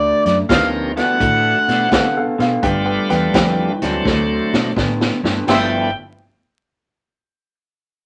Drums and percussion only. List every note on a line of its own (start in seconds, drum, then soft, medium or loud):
0.26 snare soft
0.26 closed hi-hat medium
0.49 kick medium
0.49 snare loud
0.49 closed hi-hat medium
0.97 snare soft
0.97 closed hi-hat medium
1.20 kick medium
1.20 closed hi-hat medium
1.69 snare soft
1.69 closed hi-hat medium
1.92 kick medium
1.92 snare loud
1.92 closed hi-hat medium
2.40 snare soft
2.40 closed hi-hat medium
2.63 kick medium
2.63 closed hi-hat medium
3.10 snare soft
3.10 closed hi-hat medium
3.34 kick medium
3.34 snare loud
3.34 closed hi-hat medium
3.82 snare soft
3.82 closed hi-hat medium
4.05 kick medium
4.05 snare medium
4.54 snare medium
4.77 kick medium
4.77 snare medium
5.01 snare medium
5.25 snare medium
5.48 snare medium
5.48 crash medium